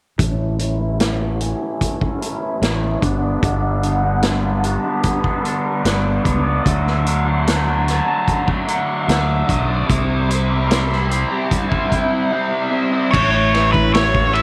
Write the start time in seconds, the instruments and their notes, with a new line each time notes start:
0.19 fingered electric bass A1, overdriven electric guitar A2 E3 A3 C#4 E4, kick, closed hi-hat
0.59 overdriven electric guitar E3 A3 C#4 E4, closed hi-hat
0.79 overdriven electric guitar A3 C#4 E4
0.98 overdriven electric guitar A2 E3 A3 C#4 E4, snare, closed hi-hat
1.20 overdriven electric guitar A3 C#4 E4
1.40 overdriven electric guitar E3 A3 C#4 E4, closed hi-hat
1.61 overdriven electric guitar A3 C#4 E4
1.81 kick, closed hi-hat
2.01 overdriven electric guitar A3 C#4 E4, kick
2.20 overdriven electric guitar E3 A3 C#4 E4, closed hi-hat
2.61 fingered electric bass A1, overdriven electric guitar A2 E3 A3 C#4 E4, snare, closed hi-hat
3.01 fingered electric bass G1, overdriven electric guitar G2 D3 G3 B3 D4, kick, closed hi-hat
3.21 overdriven electric guitar G3 B3 D4
3.41 fingered electric bass G1, overdriven electric guitar G2 D3 G3 B3 D4, kick, closed hi-hat
3.81 overdriven electric guitar D3 G3 B3 D4, closed hi-hat
4.02 overdriven electric guitar G3 B3 D4
4.21 overdriven electric guitar G2 D3 G3 B3 D4, snare, closed hi-hat
4.43 overdriven electric guitar G3 B3 D4
4.62 overdriven electric guitar D3 G3 B3 D4, closed hi-hat
4.82 overdriven electric guitar G3 B3 D4
5.03 kick, closed hi-hat
5.24 overdriven electric guitar G3 B3 D4, kick
5.43 overdriven electric guitar D3 G3 B3 D4, closed hi-hat
5.83 fingered electric bass G1, overdriven electric guitar G2 D3 G3 B3 D4, snare, closed hi-hat
6.23 fingered electric bass C#2, overdriven electric guitar D3 G3 B3 D4, kick, closed hi-hat
6.45 overdriven electric guitar G3 B3 D4
6.64 fingered electric bass D2, overdriven electric guitar D3 F#3 A3 D4, kick, closed hi-hat
6.87 snare
7.04 overdriven electric guitar D3 F#3 A3 D4, closed hi-hat
7.25 overdriven electric guitar F#3 A3 D4
7.45 overdriven electric guitar D3 F#3 A3 D4, snare, closed hi-hat
7.67 overdriven electric guitar F#3 A3 D4
7.86 overdriven electric guitar D3 F#3 A3 D4, snare, closed hi-hat
8.06 overdriven electric guitar F#3 A3 D4
8.28 kick, closed hi-hat
8.47 overdriven electric guitar F#3 A3 D4, kick
8.67 overdriven electric guitar D3 F#3 A3 D4, closed hi-hat
9.07 fingered electric bass D2, overdriven electric guitar D3 F#3 A3 D4, snare, closed hi-hat
9.47 fingered electric bass B1, overdriven electric guitar D3 F#3 A3 D4, kick, closed hi-hat
9.68 overdriven electric guitar F#3 A3 D4
9.87 fingered electric bass C2, overdriven electric guitar C3 G3 C4 E4, kick, closed hi-hat
10.28 overdriven electric guitar C3 G3 C4 E4, closed hi-hat
10.48 overdriven electric guitar G3 C4 E4
10.67 overdriven electric guitar C3 G3 C4 E4, closed hi-hat
10.71 snare
10.88 overdriven electric guitar G3 C4 E4
10.92 snare
11.08 overdriven electric guitar C3 G3 C4 E4, closed hi-hat
11.29 overdriven electric guitar G3 C4 E4
11.51 kick, closed hi-hat
11.69 overdriven electric guitar G3 C4 E4, kick
11.89 overdriven electric guitar C3 G3 C4 E4, kick, closed hi-hat
12.31 overdriven electric guitar C3 G3 C4 E4
12.70 overdriven electric guitar C3 G3 C4 E4
12.91 overdriven electric guitar G3 C4 E4
13.11 fingered electric bass A1, overdriven electric guitar A2, string machine A3 E4, lead electric guitar C#5, kick, crash
13.15 string machine C#5
13.53 overdriven electric guitar E3, snare, ride
13.72 lead electric guitar B4, kick
13.94 overdriven electric guitar A3, lead electric guitar C#5, snare, ride
14.15 kick
14.33 overdriven electric guitar E4, lead electric guitar E5, ride